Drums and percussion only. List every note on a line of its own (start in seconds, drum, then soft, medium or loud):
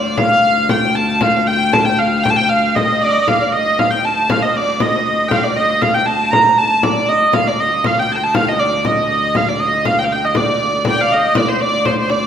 0.18 frame drum medium
0.44 frame drum soft
0.69 frame drum medium
1.21 frame drum medium
1.48 frame drum soft
1.73 frame drum medium
2.25 frame drum medium
2.76 frame drum medium
3.28 frame drum medium
3.54 frame drum soft
3.79 frame drum medium
4.30 frame drum medium
4.55 frame drum soft
4.80 frame drum medium
5.31 frame drum medium
5.57 frame drum soft
5.82 frame drum medium
6.33 frame drum medium
6.83 frame drum medium
7.09 frame drum soft
7.33 frame drum medium
7.59 frame drum soft
7.84 frame drum medium
8.35 frame drum medium
8.60 frame drum soft
8.85 frame drum medium
9.35 frame drum medium
9.60 frame drum soft
9.85 frame drum medium
10.35 frame drum medium
10.60 frame drum soft
10.85 frame drum medium
11.10 frame drum soft
11.35 frame drum medium
11.85 frame drum medium
12.10 frame drum medium